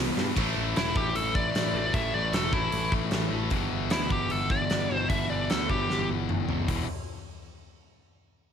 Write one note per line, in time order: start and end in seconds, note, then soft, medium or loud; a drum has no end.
0.00 0.35 E2 medium
0.00 0.35 B2 loud
0.00 0.36 B2 medium
0.00 0.36 E3 loud
0.00 0.37 E3 loud
0.17 0.29 G2 medium
0.17 snare medium
0.37 0.54 A1 loud
0.37 1.73 A2 medium
0.37 1.76 E3 medium
0.37 kick medium
0.37 crash medium
0.41 1.73 A3 medium
0.56 0.74 A1 medium
0.76 0.94 E1 medium
0.76 0.97 E4 loud
0.76 snare loud
0.76 open hi-hat medium
0.95 1.13 A1 medium
0.95 1.15 G4 medium
0.95 kick medium
1.15 1.33 A1 medium
1.15 1.34 A4 medium
1.15 open hi-hat medium
1.35 1.53 A1 medium
1.35 1.92 D5 medium
1.35 kick loud
1.54 1.72 A1 medium
1.54 snare loud
1.54 open hi-hat soft
1.74 1.92 A1 medium
1.74 1.95 E3 medium
1.74 1.93 A3 medium
1.78 1.92 A2 medium
1.93 2.12 A1 loud
1.93 3.31 A2 medium
1.93 3.33 E3 medium
1.93 3.30 A3 medium
1.93 2.13 E5 medium
1.93 kick medium
1.93 open hi-hat soft
2.14 2.32 A1 medium
2.14 2.33 D5 medium
2.33 2.51 E1 medium
2.33 2.53 A4 medium
2.33 snare loud
2.33 open hi-hat medium
2.53 2.71 A1 medium
2.53 2.91 E4 medium
2.53 kick medium
2.72 2.90 A1 medium
2.72 open hi-hat soft
2.92 3.10 A1 medium
2.92 kick medium
3.11 3.30 A1 medium
3.11 snare medium
3.11 open hi-hat soft
3.31 3.50 A1 medium
3.31 3.52 A2 medium
3.31 3.54 E3 medium
3.31 3.50 A3 medium
3.50 3.70 G1 medium
3.50 4.88 E2 medium
3.50 4.89 B2 medium
3.50 4.90 E3 medium
3.50 kick medium
3.50 open hi-hat soft
3.71 3.90 G1 medium
3.90 4.09 D2 medium
3.90 4.11 E4 loud
3.90 snare loud
3.90 open hi-hat medium
4.10 4.29 G1 medium
4.10 4.31 G4 medium
4.10 kick medium
4.30 4.50 G1 medium
4.30 4.50 A4 medium
4.30 open hi-hat soft
4.50 4.69 G1 medium
4.50 4.95 D5 medium
4.50 kick medium
4.70 4.89 G1 medium
4.70 snare medium
4.70 open hi-hat soft
4.90 5.09 G1 medium
4.90 5.09 E2 medium
4.90 5.10 B2 medium
4.90 5.14 E3 medium
4.95 5.08 C5 medium
5.10 5.28 G1 medium
5.10 6.48 E2 medium
5.10 6.49 B2 medium
5.10 5.30 E5 medium
5.10 kick medium
5.10 open hi-hat soft
5.14 6.47 E3 medium
5.30 5.48 G1 medium
5.30 5.49 D5 medium
5.50 5.68 D2 medium
5.50 5.69 A4 medium
5.50 snare loud
5.50 open hi-hat medium
5.70 5.88 G1 medium
5.70 6.08 G4 medium
5.70 kick medium
5.89 6.07 G1 medium
5.89 snare medium
6.09 6.27 G1 medium
6.29 6.47 G1 medium
6.29 mid tom medium
6.48 6.67 F#1 medium
6.48 6.67 E2 medium
6.48 6.68 B2 medium
6.48 6.67 E3 medium
6.48 floor tom medium
6.68 6.87 E1 medium
6.68 6.84 E2 medium
6.68 6.85 B2 medium
6.68 6.85 E3 medium
6.68 kick medium
6.68 floor tom medium
6.68 open hi-hat medium